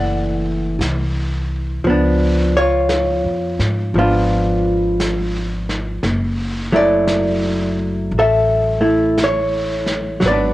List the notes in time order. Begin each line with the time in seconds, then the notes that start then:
Already playing: F#1 E3 A3 A4 D5 F#5
0.79 C2, brush sweep, snare, hi-hat pedal
1.84 C#2 F3 B3, brush sweep
1.89 D4
2.57 F4 C#5
2.89 brush sweep, snare, hi-hat pedal
3.25 F2
3.59 G#2, snare
3.94 G#1 F3 B3, brush sweep
3.99 D4 F4
5.00 brush sweep, snare, hi-hat pedal
5.69 snare
6.03 F#1, brush sweep, snare
6.72 F#3 A3 E4 D5
7.08 brush sweep, snare, hi-hat pedal
8.11 A1, brush sweep
8.19 A4 E5
8.81 A3 E4
9.18 brush sweep, snare, hi-hat pedal
9.24 C#5
9.86 snare
10.20 G#1 F#3, brush sweep, snare
10.26 B3 B4 D5
10.31 D4